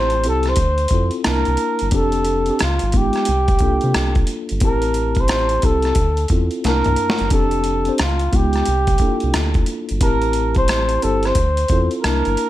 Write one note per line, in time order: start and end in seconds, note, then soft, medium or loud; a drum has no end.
0.00 0.28 A1 medium
0.00 0.12 C4 medium
0.00 0.13 E4 medium
0.00 0.13 G4 medium
0.00 0.25 C5 loud
0.00 0.13 A5 medium
0.10 closed hi-hat soft
0.24 0.55 C2 medium
0.24 0.58 C4 medium
0.24 0.58 E4 medium
0.24 0.58 G4 medium
0.24 0.59 A4 medium
0.24 closed hi-hat medium
0.28 0.50 A4 loud
0.43 cross-stick soft
0.43 closed hi-hat soft
0.49 1.14 C5 loud
0.56 0.87 D2 loud
0.56 kick medium
0.56 closed hi-hat medium
0.78 closed hi-hat soft
0.88 1.25 C4 medium
0.88 1.25 E4 medium
0.88 kick medium
0.88 closed hi-hat medium
0.92 1.10 F2 medium
0.92 1.26 F4 medium
0.92 1.26 A4 medium
1.11 closed hi-hat soft
1.24 1.44 C2 medium
1.24 1.84 A#3 medium
1.24 1.85 D4 medium
1.24 1.85 E4 medium
1.24 1.85 A5 medium
1.24 cross-stick medium
1.24 closed hi-hat medium
1.28 1.90 A#4 medium
1.45 1.58 C2 medium
1.45 closed hi-hat soft
1.57 closed hi-hat medium
1.79 1.92 G1 medium
1.79 closed hi-hat soft
1.91 2.51 F1 medium
1.91 2.37 C4 medium
1.91 2.38 D4 medium
1.91 2.38 G4 medium
1.91 2.38 A4 medium
1.91 kick loud
1.91 closed hi-hat medium
1.96 2.58 A4 loud
2.12 closed hi-hat soft
2.25 closed hi-hat medium
2.46 2.60 C4 medium
2.46 2.60 D4 medium
2.46 closed hi-hat soft
2.50 2.61 G4 medium
2.50 2.61 A4 medium
2.59 2.80 C#2 medium
2.59 2.99 F4 medium
2.59 cross-stick medium
2.59 closed hi-hat medium
2.79 3.11 G#1 medium
2.79 closed hi-hat soft
2.92 3.28 G#3 medium
2.92 3.27 B3 medium
2.92 3.28 D#4 medium
2.92 3.28 F4 medium
2.92 kick medium
2.92 closed hi-hat medium
2.97 4.30 G4 medium
3.13 cross-stick soft
3.13 closed hi-hat soft
3.25 3.57 C2 medium
3.25 closed hi-hat medium
3.48 kick medium
3.48 closed hi-hat soft
3.59 3.80 C2 medium
3.59 4.50 A#3 medium
3.59 4.51 D4 medium
3.59 4.51 F4 medium
3.59 kick medium
3.59 closed hi-hat medium
3.63 4.51 A4 medium
3.81 3.94 C3 medium
3.81 closed hi-hat soft
3.94 4.24 C2 medium
3.94 cross-stick loud
3.94 closed hi-hat medium
4.15 kick medium
4.15 closed hi-hat soft
4.27 closed hi-hat medium
4.49 4.61 G1 medium
4.49 closed hi-hat soft
4.60 5.59 A1 medium
4.60 5.52 C4 medium
4.60 5.52 E4 medium
4.60 5.52 G4 medium
4.60 kick loud
4.60 closed hi-hat medium
4.65 5.22 A#4 loud
4.65 5.53 A5 medium
4.82 closed hi-hat soft
4.94 closed hi-hat medium
5.15 kick medium
5.15 closed hi-hat soft
5.20 5.66 C5 medium
5.28 cross-stick medium
5.28 closed hi-hat medium
5.49 closed hi-hat soft
5.62 5.93 C2 medium
5.62 5.97 C4 medium
5.62 5.97 E4 medium
5.62 5.97 G4 medium
5.62 6.31 A4 medium
5.62 5.98 A4 medium
5.62 kick medium
5.62 closed hi-hat medium
5.82 cross-stick soft
5.82 closed hi-hat soft
5.95 6.26 D2 loud
5.95 kick medium
5.95 closed hi-hat medium
6.17 closed hi-hat soft
6.28 6.49 E2 medium
6.28 6.64 C4 medium
6.28 6.64 E4 medium
6.28 6.65 F4 medium
6.28 6.65 A4 medium
6.28 kick medium
6.28 closed hi-hat medium
6.51 closed hi-hat soft
6.64 6.83 C2 medium
6.64 7.24 A#3 medium
6.64 7.24 D4 medium
6.64 7.25 E4 medium
6.64 7.28 A#4 loud
6.64 7.25 A5 medium
6.64 snare medium
6.64 closed hi-hat medium
6.84 6.97 C2 medium
6.84 closed hi-hat soft
6.84 mid tom medium
6.96 closed hi-hat medium
7.10 snare medium
7.19 7.33 G1 medium
7.19 closed hi-hat soft
7.30 7.90 F1 loud
7.30 7.77 C4 medium
7.30 7.77 D4 medium
7.30 7.77 G4 medium
7.30 7.96 A4 loud
7.30 7.77 A4 medium
7.30 kick loud
7.30 closed hi-hat medium
7.51 closed hi-hat soft
7.64 closed hi-hat medium
7.85 7.99 C4 medium
7.85 8.00 D4 medium
7.85 8.00 G4 medium
7.85 8.00 C5 medium
7.85 closed hi-hat soft
7.98 8.29 C#2 medium
7.98 8.37 F4 medium
7.98 cross-stick medium
7.98 closed hi-hat medium
8.19 closed hi-hat soft
8.32 8.63 C#2 medium
8.32 8.67 G#3 medium
8.32 8.66 B3 medium
8.32 8.66 D#4 medium
8.32 8.67 F4 medium
8.32 9.69 G4 medium
8.32 kick medium
8.32 closed hi-hat medium
8.53 cross-stick soft
8.53 closed hi-hat soft
8.65 8.97 C2 loud
8.65 closed hi-hat medium
8.87 kick medium
8.87 closed hi-hat soft
8.98 9.09 C2 soft
8.98 9.90 A#3 medium
8.98 9.90 D4 medium
8.98 9.09 E4 soft
8.98 9.90 A4 medium
8.98 kick medium
8.98 closed hi-hat medium
9.08 9.94 F4 medium
9.20 9.33 C2 medium
9.20 closed hi-hat soft
9.34 9.64 D2 medium
9.34 cross-stick medium
9.34 closed hi-hat medium
9.54 kick medium
9.54 closed hi-hat soft
9.66 closed hi-hat medium
9.89 10.01 G1 medium
9.89 closed hi-hat soft
10.01 10.99 A1 medium
10.01 10.91 C4 medium
10.01 10.91 E4 medium
10.01 10.91 G4 medium
10.01 10.53 A#4 loud
10.01 10.91 A5 medium
10.01 kick loud
10.01 closed hi-hat medium
10.22 closed hi-hat soft
10.33 closed hi-hat medium
10.55 11.05 C5 medium
10.55 kick medium
10.55 closed hi-hat soft
10.68 cross-stick medium
10.68 closed hi-hat medium
10.89 closed hi-hat soft
11.02 11.33 G1 medium
11.02 11.36 C4 medium
11.02 11.36 E4 medium
11.02 11.37 G4 medium
11.02 11.27 A4 medium
11.02 11.37 C5 medium
11.02 closed hi-hat medium
11.23 11.92 C5 medium
11.23 cross-stick soft
11.23 closed hi-hat soft
11.35 11.65 D2 loud
11.35 kick medium
11.35 closed hi-hat medium
11.57 closed hi-hat soft
11.68 11.89 E2 medium
11.68 12.04 C4 medium
11.68 12.04 E4 medium
11.68 12.04 F4 medium
11.68 12.04 A4 medium
11.68 kick medium
11.68 closed hi-hat medium
11.91 closed hi-hat soft
12.02 12.23 C2 medium
12.02 12.49 A#3 medium
12.02 12.49 D4 medium
12.02 12.49 E4 medium
12.02 12.49 A#4 loud
12.02 12.49 A5 medium
12.02 cross-stick medium
12.02 closed hi-hat medium
12.25 12.37 G1 medium
12.25 closed hi-hat soft
12.37 closed hi-hat medium